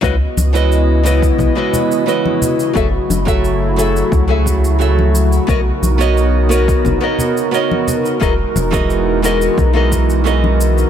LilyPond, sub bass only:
\new Staff \with { instrumentName = "Sub bass" } { \clef bass \time 4/4 \key cis \dorian \tempo 4 = 88 cis,8 cis,4. b,,8 r4. | fis,,8 fis,,4. cis,2 | b,,8 b,,4. fis,,8 r4. | e,,8 e,,4. b,,2 | }